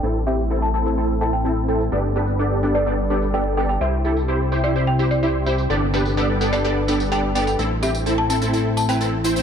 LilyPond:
<<
  \new Staff \with { instrumentName = "Marimba" } { \time 4/4 \key g \major \tempo 4 = 127 r8 e''16 r8 a''16 a''16 r8. a''16 g''4~ g''16 | r4. r16 d''16 r4 g''8 g''16 g''16 | e''16 r4. d''16 r16 g''16 r16 d''4~ d''16 | r4. r16 d''16 r4 g''8 g''16 g''16 |
r8 e''16 r8 a''16 a''16 r8. a''16 g''4~ g''16 | }
  \new Staff \with { instrumentName = "Supersaw synth" } { \time 4/4 \key g \major <c' e' a'>16 r16 <c' e' g'>8 <c' e' a'>8 <c' e' a'>16 <c' e' a'>16 <c' e' a'>16 r16 <c' e' a'>16 r16 <c' e' a'>8 <c' e' a'>16 r16 | <b d' g' a' d''>16 r16 <b d' g' a' b'>8 <b d' g' a' d''>8 <b d' g' a' d''>16 <b d' g' a' d''>16 <b d' g' a' d''>16 r16 <b d' g' a' d''>16 r16 <b d' g' a' d''>8 <b d' g' a' d''>16 r16 | <e' g' c''>16 r16 <e' g' a'>8 <e' g' c''>8 <e' g' c''>16 <e' g' c''>16 <e' g' c''>16 r16 <e' g' c''>16 r16 <e' g' c''>8 <e' g' c''>16 r16 | <b d' g' a' d''>16 r16 <b d' g' a' b'>8 <b d' g' a' d''>8 <b d' g' a' d''>16 <b d' g' a' d''>16 <b d' g' a' d''>16 r16 <b d' g' a' d''>16 r16 <b d' g' a' d''>8 <b d' g' a' d''>16 r16 |
<c' e' a'>16 r16 <c' e' g'>8 <c' e' a'>8 <c' e' a'>16 <c' e' a'>16 <c' e' a'>16 r8 <c' e' b'>16 <c' e' a'>16 r16 <c' e' c''>16 <c' e' c''>16 | }
  \new Staff \with { instrumentName = "Analog synth pad" } { \time 4/4 \key g \major <a c' e'>1 | <g d' a' b'>1 | <c c' e' g'>1 | <g d' a' b'>1 |
<a c' e'>1 | }
  \new Staff \with { instrumentName = "Analog synth bass" } { \clef bass \time 4/4 \key g \major a,,1 | g,,1 | c,1 | g,,1 |
a,,1 | }
  \new DrumStaff \with { instrumentName = "Drums" } \drummode { \time 4/4 tamb8 tamb16 tamb16 tamb8 tamb16 tamb16 tamb8 tamb16 tamb16 tamb8 tamb16 tamb16 | tamb8 tamb16 tamb16 tamb8 tamb16 tamb16 tamb8 tamb16 tamb16 tamb8 tamb16 tamb16 | tamb8 tamb16 tamb16 tamb8 tamb16 tamb16 tamb8 tamb16 tamb16 tamb8 tamb16 tamb16 | tamb8 tamb16 tamb16 tamb8 tamb16 tamb16 tamb8 tamb16 tamb16 tamb8 tamb16 tamb16 |
tamb8 tamb16 tamb16 tamb8 tamb16 tamb16 tamb8 tamb16 tamb16 tamb8 tamb16 tamb16 | }
>>